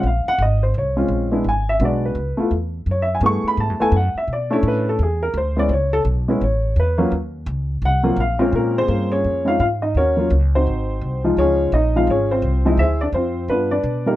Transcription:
0.03 upright bass A#1, upright piano F5
0.26 upright piano F#5, muted upright bass stroke
0.38 upright bass G#1, upright piano D#5
0.63 upright piano C5
0.74 upright bass C2, upright piano C#5
0.96 upright piano G#3 C4 C#4 F4
1.08 upright bass A#1
1.32 upright piano G#3 B3 D4 E4
1.44 upright bass G#1
1.49 upright piano G#5
1.69 upright piano E5
1.80 upright bass B1, upright piano G#3 B3 D4 F#4
1.85 upright piano D5
2.05 upright piano B4
2.15 upright bass C#2
2.37 upright piano A3 B3 E4 F4, muted upright bass stroke
2.51 upright bass E2
2.86 upright bass F#2
2.91 upright piano C#5
3.02 upright piano E5
3.15 upright piano G#5
3.21 upright bass G2, upright piano A3 B3 E4 G#4
3.26 upright piano C#6
3.43 muted upright bass stroke
3.48 upright piano B5
3.57 upright bass G#2, upright piano A5
3.70 upright bass F#2
3.80 upright bass E2, upright piano A3 B3 E4 A4 G#5
3.92 upright bass F#2
3.96 upright piano F#5
4.15 upright piano E5, muted upright bass stroke
4.28 upright bass B2
4.33 upright piano D5
4.50 upright piano A3 C#4 D4 E4 C#5
4.63 upright bass A2
4.68 upright piano B4
4.89 upright piano A4
4.99 upright bass E2, upright piano G#4
5.23 upright piano A#4
5.34 upright bass D2, upright piano C5
5.57 upright piano G#3 B3 C#4 E4 D5
5.69 upright bass C#2, upright piano C5
5.73 upright piano C#5
5.93 upright piano A4
6.05 upright bass B1
6.28 upright piano G#3 B3 C#4 E4
6.41 upright bass A1, upright piano C#5
6.76 upright bass E2, upright piano B4
6.98 upright piano F#3 A#3 C#4 F4
7.12 upright bass D#2
7.46 upright bass C#2
7.82 upright bass C2, upright piano F#5
8.03 upright piano F#3 A#3 C4 F4
8.16 upright bass A#1, upright piano F5
8.39 upright piano A#2 G#3 A#3 C4 C#4 F4 A#4
8.52 upright bass A#2, upright piano A#3 C#4 F4 A#4
8.78 upright piano C4 G#4 C5
8.88 upright bass G2, upright piano A#3 C#4 F4 G#4
9.12 upright piano C#4 G#4 C#5
9.24 upright bass F2
9.45 upright piano G#3 C4 C#4 D#4 F4 F5
9.59 upright bass G#2, upright piano F4 F5
9.82 upright piano D#4 D#5
9.95 upright bass D#2, upright piano C#4 F#4 A#4 C#5
10.17 upright piano F#3 A#3 C#4 F4
10.30 upright bass C#2
10.55 upright piano C4 D#4 F#4 C5
10.67 upright bass G#1
11.01 upright bass C2
11.24 upright piano F3 G#3 D#4 F4
11.37 upright bass C#2, upright piano C#4 F4 G#4 C#5
11.72 upright bass A#1, upright piano D#4 D#5
11.96 upright piano F3 G#3 C4 D#4 F4 F5
12.07 upright bass G#1, upright piano G#4 C#5
12.11 upright piano C#4 F4
12.31 upright piano C4 F4 C5
12.42 upright bass C2
12.65 upright piano F3 G#3 C4 D#4 E4 D#5
12.77 upright bass D2, upright piano E4 G#4 C5 E5
13.01 upright piano D4 D5
13.12 upright bass F2, upright piano C4 F4 C5
13.48 upright bass G2, upright piano B3 D4 F4 B4
13.71 upright piano D4 B4 D5
13.84 upright bass B2
14.06 upright piano G3 A#3 C4 D#4 G4 A#4

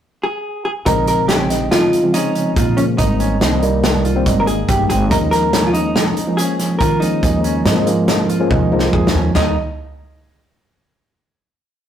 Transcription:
0.23 hollow-body jazz guitar G#4
0.65 hollow-body jazz guitar G#4
0.86 upright bass A#1, tine electric piano C#3 F3 G#3 C4, grand piano D#4, hollow-body jazz guitar A#4, kick, closed hi-hat
1.07 hollow-body jazz guitar A#4, closed hi-hat
1.28 tine electric piano C#3 F3 G#3 C4, grand piano C#4, hollow-body jazz guitar G4, snare, closed hi-hat
1.50 grand piano D#4, snare, closed hi-hat
1.71 grand piano D#4, hollow-body jazz guitar F4, snare, closed hi-hat
1.93 closed hi-hat
2.03 tine electric piano C#3 F3 G#3 C4
2.14 grand piano C#4, hollow-body jazz guitar D#4, closed hi-hat
2.35 grand piano C#4, closed hi-hat
2.56 upright bass A#2, grand piano F4, kick, closed hi-hat
2.77 tine electric piano C#3 F3 G#3 A#3, hollow-body jazz guitar C#4, closed hi-hat
2.98 upright bass G#1, tine electric piano D#3 G3 A#3 C4, hollow-body jazz guitar D#4, grand piano D#4, kick, closed hi-hat
3.20 grand piano C#4, closed hi-hat
3.40 upright bass C2, tine electric piano D#3 G3 A#3 C4, grand piano D#4, snare, closed hi-hat
3.62 tine electric piano D#3 G3 A#3 D#4, closed hi-hat
3.84 grand piano D#4, snare, closed hi-hat
4.04 grand piano F4, closed hi-hat
4.15 tine electric piano D#3 G3 A#3 C4
4.26 upright bass G#1, grand piano D#4, kick, closed hi-hat
4.40 hollow-body jazz guitar A#4
4.46 tine electric piano D#3 G#3 A#3 D#4, hollow-body jazz guitar G#4, closed hi-hat
4.68 upright bass G1, grand piano G4, kick, closed hi-hat
4.90 upright bass G#1, grand piano C4, hollow-body jazz guitar G#4, kick, closed hi-hat
5.10 upright bass D#2, tine electric piano F3 G#3 A#3 C#4, grand piano D#4, hollow-body jazz guitar A#4, kick, closed hi-hat
5.31 hollow-body jazz guitar A#4, snare, closed hi-hat
5.53 tine electric piano F3 G#3 A#3 C#4, grand piano C#4, snare, closed hi-hat
5.67 hollow-body jazz guitar F4
5.74 hollow-body jazz guitar D#4, grand piano D#4, closed hi-hat
5.96 grand piano D#4, snare, closed hi-hat
6.17 closed hi-hat
6.27 tine electric piano F3 G#3 A#3 C#4
6.37 grand piano C#4, hollow-body jazz guitar G#4, closed hi-hat
6.59 grand piano C#4, snare, closed hi-hat
6.79 upright bass D#3, grand piano F4, hollow-body jazz guitar A#4, kick, closed hi-hat
7.00 tine electric piano F3 G#3 A#3 C#4, hollow-body jazz guitar D#4, closed hi-hat
7.23 upright bass D#2, tine electric piano F3 G#3 A#3 C#4, grand piano D#4, kick, closed hi-hat
7.44 grand piano C#4, closed hi-hat
7.65 upright bass G#2, tine electric piano F3 G#3 A#3 C4, grand piano D#4, snare, closed hi-hat
7.86 tine electric piano F3 G#3 A#3 C#4, closed hi-hat
8.08 grand piano D#4, snare, closed hi-hat
8.29 grand piano F4, closed hi-hat
8.39 tine electric piano F3 G#3 A#3 C#4
8.50 upright bass D#2, grand piano D#4, kick, high tom
8.72 upright bass C2, tine electric piano F3 G#3 A#3 D#4
8.79 snare
8.93 upright bass C#2, grand piano G#4, kick, mid tom
9.07 snare
9.14 upright bass D#2, grand piano C#4
9.35 upright bass D#2, tine electric piano D#3 G3 A#3 D#4, grand piano D#4, hollow-body jazz guitar D#4, snare, floor tom, china

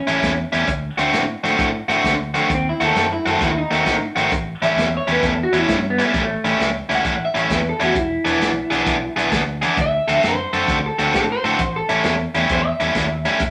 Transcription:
Already playing: clean electric guitar C#4
0.07 fingered electric bass A1, overdriven electric guitar A2 G3 C#4 E4, closed hi-hat
0.22 fingered electric bass E2, kick, snare, closed hi-hat
0.52 fingered electric bass E2, overdriven electric guitar A2 G3 C#4 E4, closed hi-hat
0.67 fingered electric bass D2, kick, closed hi-hat
0.98 fingered electric bass D2, overdriven electric guitar D3 A3 C4 F#4, closed hi-hat
1.13 fingered electric bass A2, snare, closed hi-hat
1.44 fingered electric bass A2, overdriven electric guitar D3 A3 C4 F#4, snare, closed hi-hat
1.59 fingered electric bass A2, kick, closed hi-hat
1.89 fingered electric bass A2, overdriven electric guitar D3 A3 C4 F#4, closed hi-hat
2.04 fingered electric bass D2, kick, snare, closed hi-hat
2.34 overdriven electric guitar D3 A3 C4 F#4, closed hi-hat
2.50 fingered electric bass D#2, kick, closed hi-hat
2.54 clean electric guitar C4
2.69 clean electric guitar E4
2.80 fingered electric bass D#2, overdriven electric guitar D#3 A3 C4 F#4, closed hi-hat
2.85 clean electric guitar A4
2.95 fingered electric bass F#2, snare, closed hi-hat
3.13 clean electric guitar E4
3.26 fingered electric bass F#2, overdriven electric guitar D#3 A3 C4 F#4, clean electric guitar A4, closed hi-hat
3.41 fingered electric bass D#2, clean electric guitar E4, kick, closed hi-hat
3.58 clean electric guitar D#4
3.71 fingered electric bass D#2, overdriven electric guitar D#3 A3 C4 F#4, closed hi-hat
3.86 fingered electric bass A2, kick, snare, closed hi-hat
4.16 fingered electric bass G#1, overdriven electric guitar D#3 A3 C4 F#4, closed hi-hat
4.32 fingered electric bass A1, kick, closed hi-hat
4.62 fingered electric bass A1, overdriven electric guitar A2 G3 C#4 E4, clean electric guitar E5, closed hi-hat
4.76 fingered electric bass E2, snare, closed hi-hat
4.97 clean electric guitar C#5
5.07 fingered electric bass E2, overdriven electric guitar A2 G3 C#4 E4, closed hi-hat
5.12 clean electric guitar B4
5.23 fingered electric bass E2, clean electric guitar A4, kick, closed hi-hat
5.43 clean electric guitar F#4
5.52 fingered electric bass E2, overdriven electric guitar A2 G3 C#4 E4, closed hi-hat
5.58 clean electric guitar E4
5.68 fingered electric bass G2, kick, snare, closed hi-hat
5.74 clean electric guitar C#4
5.90 clean electric guitar B3
5.99 overdriven electric guitar A2 G3 C#4 E4, closed hi-hat
6.04 clean electric guitar A3
6.14 fingered electric bass A1, kick, closed hi-hat
6.21 clean electric guitar A3
6.44 fingered electric bass A1, overdriven electric guitar A2 G3 C#4 E4, closed hi-hat
6.60 fingered electric bass C#2, snare, closed hi-hat
6.89 fingered electric bass C#2, overdriven electric guitar A2 G3 C#4 E4, snare, closed hi-hat
6.95 clean electric guitar F#5
7.04 fingered electric bass A1, kick, closed hi-hat
7.25 clean electric guitar E5
7.34 fingered electric bass A1, overdriven electric guitar A2 G3 C#4 E4, closed hi-hat
7.39 clean electric guitar C#5
7.50 fingered electric bass E2, kick, snare, closed hi-hat
7.55 clean electric guitar B4
7.69 clean electric guitar A4
7.80 fingered electric bass E2, overdriven electric guitar A2 G3 C#4 E4, closed hi-hat
7.84 clean electric guitar F#4
7.95 fingered electric bass E1, clean electric guitar E4, kick, closed hi-hat
8.25 fingered electric bass E1, overdriven electric guitar E3 B3 D4 G#4, closed hi-hat
8.40 fingered electric bass B1, snare, closed hi-hat
8.70 fingered electric bass B1, overdriven electric guitar E3 B3 D4 G#4, snare, closed hi-hat
8.86 fingered electric bass B1, kick, closed hi-hat
9.16 fingered electric bass B1, overdriven electric guitar E3 B3 D4 G#4, closed hi-hat
9.32 fingered electric bass D2, kick, snare, closed hi-hat
9.62 overdriven electric guitar E3 B3 D4 G#4, closed hi-hat
9.77 fingered electric bass D2, kick, closed hi-hat
9.81 clean electric guitar E5
10.08 fingered electric bass D2, overdriven electric guitar D3 C4 F#4 A4, closed hi-hat
10.23 fingered electric bass F#2, snare, closed hi-hat
10.28 clean electric guitar C5
10.53 fingered electric bass F#2, overdriven electric guitar D3 C4 F#4 A4, closed hi-hat
10.68 fingered electric bass D2, kick, closed hi-hat
10.86 clean electric guitar A4
10.99 fingered electric bass D2, overdriven electric guitar D3 C4 F#4 A4, closed hi-hat
11.13 fingered electric bass A2, clean electric guitar A4, kick, snare, closed hi-hat
11.32 clean electric guitar C5
11.44 fingered electric bass A2, overdriven electric guitar D3 C4 F#4 A4, closed hi-hat
11.59 fingered electric bass A1, kick, closed hi-hat
11.76 clean electric guitar A4
11.89 fingered electric bass A1, overdriven electric guitar A2 G3 C#4 E4, closed hi-hat
12.03 fingered electric bass E2, snare, closed hi-hat
12.34 fingered electric bass E2, overdriven electric guitar A2 G3 C#4 E4, snare, closed hi-hat
12.49 fingered electric bass E2, clean electric guitar C5, kick, closed hi-hat
12.66 clean electric guitar E5
12.80 fingered electric bass E2, overdriven electric guitar A2 G3 C#4 E4, closed hi-hat
12.94 fingered electric bass D#2, kick, snare, closed hi-hat
13.25 overdriven electric guitar A2 G3 C#4 E4, closed hi-hat
13.40 fingered electric bass E1, kick, closed hi-hat

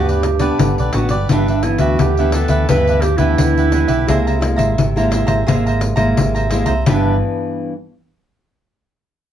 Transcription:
Already playing: fingered electric bass D2, nylon-string guitar G2 B3 D4, clarinet G4
0.09 cavaquinho G4 B4 D5, pandeiro
0.23 muted cavaquinho stroke, pandeiro
0.39 nylon-string guitar B3 D4, cavaquinho G4 B4 D5, pandeiro
0.58 fingered electric bass G1, nylon-string guitar D3, pandeiro
0.78 fingered electric bass B1, cavaquinho G4 B4 D5, pandeiro
0.93 fingered electric bass A1, nylon-string guitar F#3 B3 D4, cavaquinho F#4 G4 B4 D5, pandeiro
1.09 fingered electric bass G1, cavaquinho G4 B4 D5, pandeiro
1.29 fingered electric bass G1, nylon-string guitar G2 E3 B3 D4, clarinet D4, cavaquinho D4 G4 B4 E5, pandeiro
1.48 cavaquinho G4 B4 E5, pandeiro
1.63 nylon-string guitar E3 B3 D4, clarinet E4, muted cavaquinho stroke, pandeiro
1.78 fingered electric bass D2, clarinet F#4, cavaquinho G4 B4 E5, pandeiro
1.98 fingered electric bass D2, nylon-string guitar D3, clarinet G4, pandeiro
2.17 nylon-string guitar E3 B3 D4, cavaquinho G4 B4 E5, pandeiro
2.32 cavaquinho D4 G4 B4 E5, clarinet A4, pandeiro
2.48 fingered electric bass D2, cavaquinho G4 B4 E5, pandeiro
2.69 fingered electric bass D2, nylon-string guitar G2 E3 B3 D4, cavaquinho D4 G4 B4 E5, clarinet B4, pandeiro
2.88 cavaquinho G4 B4 E5, pandeiro
3.01 clarinet G4, muted cavaquinho stroke, pandeiro
3.16 fingered electric bass D2, nylon-string guitar E3 B3 D4, clarinet E4, cavaquinho G4 B4 E5, pandeiro
3.38 fingered electric bass D2, nylon-string guitar D3, pandeiro
3.57 cavaquinho G4 B4 E5, pandeiro
3.70 nylon-string guitar E3 B3 D4, cavaquinho D4 G4 B4 E5, pandeiro
3.88 fingered electric bass B1, cavaquinho G4 B4 E5, pandeiro
4.07 fingered electric bass C2, nylon-string guitar C3 G#3 A#3 E4, cavaquinho G#4 C5 E5 A#5, pandeiro
4.27 cavaquinho C5 E5 A#5, pandeiro
4.41 nylon-string guitar G#3 A#3 E4, muted cavaquinho stroke, pandeiro
4.56 fingered electric bass G#1, cavaquinho C5 E5 A#5, pandeiro
4.78 fingered electric bass G#1, nylon-string guitar C3, pandeiro
4.96 nylon-string guitar G#3 A#3 E4, cavaquinho C5 E5 A#5, pandeiro
5.11 cavaquinho G#4 C5 E5 A#5, pandeiro
5.27 fingered electric bass G#1, cavaquinho C5 E5 A#5, pandeiro
5.47 fingered electric bass G#1, nylon-string guitar C3 G#3 A#3 E4, cavaquinho G#4 C5 E5 A#5, pandeiro
5.66 cavaquinho C5 E5 A#5, pandeiro
5.81 muted cavaquinho stroke, pandeiro
5.96 fingered electric bass G#1, nylon-string guitar G#3 A#3 E4, cavaquinho C5 E5 A#5, pandeiro
6.17 fingered electric bass G#1, nylon-string guitar C3, pandeiro
6.35 cavaquinho C5 E5 A#5, pandeiro
6.50 nylon-string guitar G#3 A#3 E4, cavaquinho G#4 C5 E5 A#5, pandeiro
6.66 fingered electric bass C2, cavaquinho C5 E5 A#5, pandeiro
6.86 fingered electric bass G1, nylon-string guitar G2 E3 B3 D4, cavaquinho D4 G4 B4 E5, clarinet D4, pandeiro

